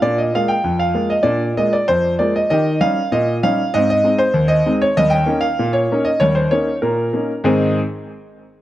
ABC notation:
X:1
M:2/4
L:1/16
Q:1/4=97
K:Ab
V:1 name="Grand piano"
=d e f g2 f2 e | =d2 e d c2 d e | e2 f2 e2 f2 | e e2 c2 e2 d |
e g2 f2 d2 e | d c d2 B4 | [A,,E,CEAc]2 z6 |]
V:2 name="Grand piano"
[B,,=D]2 [A,B,F]2 F,,2 [A,B,F]2 | [B,,=D]2 [A,B,F]2 F,,2 [A,B,F]2 | [E,G]2 [G,DE]2 B,,2 [G,DE]2 | [A,,C]2 [A,CE]2 E,,2 [A,CE]2 |
[E,,G,]2 [B,DE]2 B,,2 [B,DE]2 | [E,,G,]2 [B,DE]2 B,,2 [B,DE]2 | z8 |]